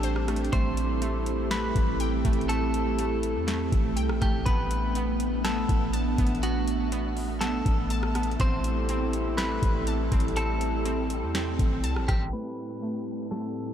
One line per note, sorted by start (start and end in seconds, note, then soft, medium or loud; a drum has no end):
0.00 0.50 A1 loud
0.00 4.42 G3 medium
0.00 0.27 A3 loud
0.00 0.49 C4 medium
0.00 0.49 D4 medium
0.00 4.42 G4 medium
0.00 0.49 A4 medium
0.00 0.53 C5 loud
0.00 closed hi-hat medium
0.00 downlifter medium
0.16 cross-stick medium
0.28 0.52 A3 medium
0.28 cross-stick medium
0.28 closed hi-hat medium
0.36 closed hi-hat medium
0.45 closed hi-hat soft
0.53 1.72 A1 loud
0.53 8.36 A3 medium
0.53 1.01 A3 loud
0.53 4.42 C4 medium
0.53 4.42 E4 medium
0.53 4.42 A4 medium
0.53 1.47 C5 loud
0.53 kick loud
0.53 closed hi-hat medium
0.77 closed hi-hat medium
1.02 1.49 A3 medium
1.02 closed hi-hat medium
1.26 closed hi-hat medium
1.51 2.24 A3 loud
1.51 1.97 B4 loud
1.51 snare loud
1.51 closed hi-hat medium
1.76 2.23 A1 loud
1.76 kick medium
1.76 closed hi-hat medium
2.00 3.48 G5 loud
2.00 closed hi-hat medium
2.25 3.37 A1 loud
2.25 2.48 A3 medium
2.25 kick loud
2.25 closed hi-hat medium
2.33 closed hi-hat medium
2.41 closed hi-hat soft
2.49 2.98 A3 loud
2.49 3.44 A4 loud
2.49 closed hi-hat medium
2.74 closed hi-hat medium
2.99 3.46 A3 medium
2.99 closed hi-hat medium
3.23 closed hi-hat medium
3.36 3.71 E2 loud
3.47 4.20 A3 medium
3.47 snare loud
3.47 closed hi-hat medium
3.72 3.99 A1 loud
3.72 kick loud
3.72 closed hi-hat medium
3.96 4.11 C2 medium
3.96 4.46 G5 loud
3.96 closed hi-hat medium
4.09 4.21 A1 loud
4.09 cross-stick loud
4.21 4.45 A1 loud
4.21 4.46 A3 medium
4.21 4.45 G4 medium
4.21 kick loud
4.21 cross-stick medium
4.21 closed hi-hat medium
4.46 5.65 A1 loud
4.46 8.36 A3 medium
4.46 8.36 B3 medium
4.46 4.95 B3 medium
4.46 8.36 D4 medium
4.46 5.40 B4 loud
4.46 6.41 B4 medium
4.46 kick loud
4.46 closed hi-hat medium
4.71 closed hi-hat medium
4.95 5.43 B3 medium
4.95 closed hi-hat medium
5.20 closed hi-hat medium
5.45 6.17 B3 loud
5.45 5.91 A4 medium
5.45 snare loud
5.45 closed hi-hat medium
5.69 6.16 A1 loud
5.69 kick loud
5.69 closed hi-hat medium
5.93 7.41 A5 loud
5.93 closed hi-hat medium
6.18 7.62 A1 loud
6.18 6.42 B3 medium
6.18 kick loud
6.18 closed hi-hat medium
6.27 closed hi-hat medium
6.35 closed hi-hat soft
6.43 6.91 B3 medium
6.43 7.37 F#4 loud
6.43 8.38 A4 medium
6.43 closed hi-hat medium
6.68 closed hi-hat medium
6.92 7.40 B3 medium
6.92 closed hi-hat medium
7.17 open hi-hat soft
7.41 8.14 B3 medium
7.41 8.35 A4 medium
7.41 snare loud
7.41 closed hi-hat medium
7.66 8.37 A1 loud
7.66 kick loud
7.66 closed hi-hat medium
7.90 8.40 A5 loud
7.90 closed hi-hat medium
8.03 cross-stick loud
8.15 8.40 B3 medium
8.15 cross-stick medium
8.15 closed hi-hat medium
8.23 closed hi-hat medium
8.31 closed hi-hat soft
8.40 9.59 A1 loud
8.40 12.29 G3 medium
8.40 12.29 A3 medium
8.40 12.29 C4 medium
8.40 8.88 C4 loud
8.40 12.29 E4 medium
8.40 12.29 G4 medium
8.40 12.29 A4 medium
8.40 9.35 C5 loud
8.40 kick loud
8.40 closed hi-hat medium
8.64 closed hi-hat medium
8.89 9.37 C4 medium
8.89 closed hi-hat medium
9.13 closed hi-hat medium
9.37 10.11 C4 medium
9.37 9.84 B4 medium
9.37 snare loud
9.37 closed hi-hat medium
9.62 10.10 A1 loud
9.62 kick loud
9.62 closed hi-hat medium
9.87 11.35 A5 medium
9.87 closed hi-hat medium
10.12 11.24 A1 loud
10.12 10.36 C4 medium
10.12 kick loud
10.12 closed hi-hat medium
10.20 closed hi-hat medium
10.28 closed hi-hat soft
10.36 10.84 C4 loud
10.36 11.31 A4 loud
10.36 closed hi-hat medium
10.61 closed hi-hat medium
10.85 11.34 C4 medium
10.85 closed hi-hat medium
11.10 closed hi-hat medium
11.22 11.58 E2 loud
11.35 12.07 C4 loud
11.35 snare loud
11.35 closed hi-hat medium
11.59 11.85 A1 loud
11.59 kick loud
11.59 closed hi-hat medium
11.84 11.98 C2 loud
11.84 12.33 A5 loud
11.84 closed hi-hat medium
11.96 12.08 A1 medium
11.96 cross-stick medium
12.08 12.32 A1 loud
12.08 12.33 C4 medium
12.08 12.32 G4 medium
12.08 kick loud
12.08 cross-stick medium
12.08 closed hi-hat medium
12.33 13.74 A2 medium
12.33 13.74 G3 medium
12.33 13.74 A3 medium
12.33 12.81 A3 medium
12.33 13.74 C4 medium
12.33 13.74 D4 medium
12.33 13.74 E4 medium
12.33 13.74 G4 medium
12.33 13.27 B4 medium
12.83 13.30 A3 medium
13.31 13.74 A3 medium
13.31 13.74 A4 medium
13.31 snare loud